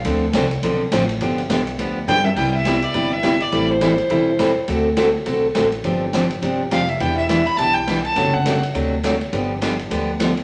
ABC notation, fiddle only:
X:1
M:4/4
L:1/8
Q:"Swing" 1/4=207
K:C
V:1 name="Fiddle"
z8 | z6 g e | g e2 d2 e2 d- | d c6 z |
z8 | z6 f e | g e e b a g2 a- | a ^f2 z4 z |
z8 |]